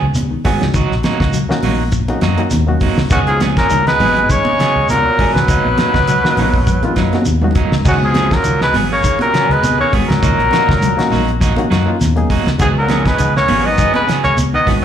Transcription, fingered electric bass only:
0.02 0.12 C#2 loud
0.15 0.28 C#2 medium
0.45 0.57 G#1 medium
0.61 0.72 C#2 medium
0.74 0.87 C#2 loud
0.90 1.01 A#1 medium
1.20 1.43 C#2 medium
1.63 2.08 A#1 loud
2.22 2.34 F#2 loud
2.52 2.75 D#2 loud
2.98 3.08 C#2 medium
3.11 3.56 C#2 loud
3.70 3.93 C#2 medium
4.00 4.23 G#1 loud
4.76 4.86 C#2 medium
4.89 5.01 C#2 loud
5.19 5.31 G#1 medium
5.34 5.45 C#2 medium
5.48 5.61 C#2 loud
5.65 5.75 A#1 medium
5.94 6.17 C#2 medium
6.37 6.83 A#1 medium
6.96 7.09 F#2 loud
7.26 7.49 D#2 loud
7.72 7.82 C#2 medium
7.86 8.31 C#2 loud
8.45 8.68 C#2 medium
8.74 8.97 G#1 medium
9.49 9.60 C#2 medium
9.62 9.75 C#2 medium
9.93 10.05 G#1 medium
10.09 10.19 C#2 medium
10.23 10.35 C#2 loud
10.39 10.49 A#1 medium
10.69 10.91 C#2 medium
11.11 11.57 A#1 medium
11.71 11.83 F#2 loud
12.01 12.23 D#2 loud
12.47 12.57 C#2 medium
12.60 13.05 C#2 loud
13.19 13.41 C#2 medium
13.49 13.72 G#1 medium
14.24 14.34 C#2 loud
14.38 14.50 C#2 medium
14.67 14.79 G#1 loud

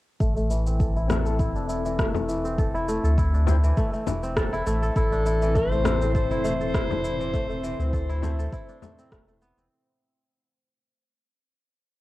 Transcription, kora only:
0.21 0.36 A3 medium
0.37 1.10 A3 medium
0.51 1.84 E3 medium
0.67 2.44 C4 medium
0.80 1.25 A4 medium
0.96 1.39 E4 medium
1.10 1.98 A3 loud
1.26 2.57 A4 medium
1.39 1.69 E4 medium
1.55 3.23 D4 medium
1.69 2.74 E4 medium
1.85 2.27 E3 medium
1.99 2.15 A3 medium
2.15 2.88 A3 medium
2.28 3.62 E3 medium
2.44 4.23 C4 medium
2.59 3.04 A4 medium
2.74 3.17 E4 loud
2.88 3.77 A3 loud
3.04 4.36 A4 medium
3.18 3.47 E4 medium
3.34 5.02 D4 medium
3.48 4.52 E4 medium
3.64 4.06 E3 medium
3.77 3.93 A3 loud
3.93 4.66 A3 medium
4.07 5.41 E3 medium
4.23 6.01 C4 medium
4.37 4.82 A4 medium
4.53 4.96 E4 loud
4.67 5.55 A3 loud
4.82 6.14 A4 medium
4.96 5.26 E4 medium
5.12 6.80 D4 medium
5.26 6.30 E4 medium
5.42 5.84 E3 medium
5.55 5.71 A3 medium
5.72 6.44 A3 medium
5.85 7.18 E3 medium
6.01 7.79 C4 medium
6.15 6.60 A4 medium
6.31 6.74 E4 loud
6.44 7.33 A3 medium
6.60 7.92 A4 medium
6.74 7.03 E4 medium
6.90 8.58 D4 medium
7.04 8.09 E4 medium
7.20 7.62 E3 medium
7.33 7.49 A3 loud
7.49 8.23 A3 medium
7.63 9.76 E3 medium
7.79 8.98 C4 medium
7.93 8.38 A4 medium
8.09 8.52 E4 loud
8.23 8.82 A3 loud
8.39 9.71 A4 medium
8.53 10.09 E4 loud
8.69 10.37 D4 medium
8.83 9.12 A3 medium
8.99 9.48 C4 medium
9.12 9.28 A3 loud
9.28 11.28 A3 medium
9.42 9.64 B3 loud
9.58 11.38 C4 medium

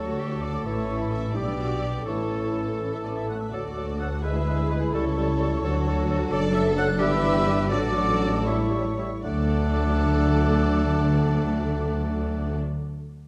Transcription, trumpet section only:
0.00 1.31 A4 medium
1.35 2.06 G4 medium
2.07 4.21 A4 medium
4.24 4.94 B4 medium
4.93 6.83 A4 medium
7.00 7.70 B4 medium
7.70 8.96 A4 medium
9.24 12.57 A4 medium

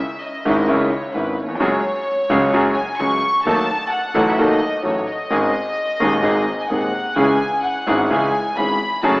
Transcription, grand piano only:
0.45 0.65 G#1 medium
0.45 0.66 G#2 medium
0.45 0.65 D#3 medium
0.45 0.66 G#3 medium
0.45 0.66 C#4 medium
0.45 0.65 E4 medium
0.68 0.88 C#2 medium
0.68 0.89 C#3 medium
0.68 0.89 D#3 medium
0.68 0.88 G#3 medium
0.68 0.89 C#4 medium
0.68 0.89 E4 medium
1.14 1.35 G#1 soft
1.14 1.35 G#2 soft
1.14 1.35 D#3 soft
1.14 1.35 G#3 soft
1.14 1.35 C#4 soft
1.14 1.35 E4 soft
1.42 1.50 D#2 soft
1.48 1.56 E2 medium
1.55 1.62 F2 medium
1.60 1.81 F#2 medium
1.60 1.81 F#3 medium
1.60 1.81 G#3 medium
1.60 1.81 C#4 medium
1.60 1.81 G#4 medium
2.30 2.50 C#2 medium
2.30 2.50 C#3 medium
2.30 2.50 F#3 medium
2.30 2.50 G#3 medium
2.30 2.50 C#4 medium
2.30 2.50 G#4 medium
2.53 2.74 F#2 medium
2.53 2.74 F#3 medium
2.53 2.73 G#3 medium
2.53 2.74 C#4 medium
2.53 2.74 G#4 medium
2.99 3.20 C#2 medium
2.99 3.20 C#3 medium
2.99 3.19 F#3 soft
2.99 3.20 G#3 soft
2.99 3.20 C#4 soft
2.99 3.20 G#4 soft
3.47 3.66 D#2 medium
3.47 3.66 D#3 medium
3.47 3.66 F#3 medium
3.47 3.66 A3 medium
3.47 3.67 D#4 medium
3.47 3.66 A4 medium
4.14 4.35 A1 medium
4.14 4.35 A2 medium
4.14 4.34 F#3 medium
4.14 4.35 A3 medium
4.14 4.35 D#4 medium
4.14 4.35 A4 medium
4.38 4.58 D#2 medium
4.38 4.58 D#3 medium
4.38 4.58 F#3 medium
4.38 4.58 A3 medium
4.38 4.58 D#4 medium
4.38 4.58 A4 medium
4.83 5.04 A1 medium
4.83 5.04 A2 medium
4.83 5.04 F#3 soft
4.83 5.04 A3 soft
4.83 5.04 D#4 soft
4.83 5.04 A4 soft
5.30 5.50 G#1 medium
5.30 5.50 G#2 medium
5.30 5.50 D#3 medium
5.30 5.50 G#3 medium
5.30 5.50 C#4 medium
5.30 5.51 G#4 medium
6.00 6.20 D#1 medium
6.00 6.20 D#2 medium
6.00 6.20 D#3 medium
6.00 6.20 G#3 medium
6.00 6.20 C#4 medium
6.00 6.20 G#4 medium
6.23 6.43 G#1 medium
6.23 6.43 G#2 medium
6.23 6.43 D#3 medium
6.23 6.43 G#3 medium
6.23 6.43 C4 medium
6.23 6.43 G#4 medium
6.70 6.90 D#1 soft
6.70 6.90 D#2 soft
6.70 6.89 D#3 soft
6.70 6.90 G#3 soft
6.70 6.90 C4 soft
6.70 6.90 G#4 soft
7.16 7.36 C#2 medium
7.16 7.36 C#3 medium
7.16 7.36 E3 medium
7.16 7.36 G#3 medium
7.16 7.36 C#4 medium
7.16 7.37 G#4 medium
7.87 8.06 G#1 medium
7.87 8.07 G#2 medium
7.87 8.06 E3 medium
7.87 8.06 G#3 medium
7.87 8.07 C#4 medium
7.87 8.07 G#4 medium
8.10 8.30 C#2 medium
8.10 8.30 C#3 medium
8.10 8.30 E3 medium
8.10 8.30 G#3 medium
8.10 8.30 C#4 medium
8.10 8.30 G#4 medium
8.57 8.76 G#1 soft
8.57 8.76 G#2 soft
8.57 8.76 E3 soft
8.57 8.76 G#3 soft
8.57 8.76 C#4 soft
8.57 8.76 G#4 soft
9.03 9.20 F#2 medium
9.03 9.20 F#3 medium
9.03 9.20 A3 medium
9.03 9.20 C#4 medium
9.03 9.20 G#4 medium

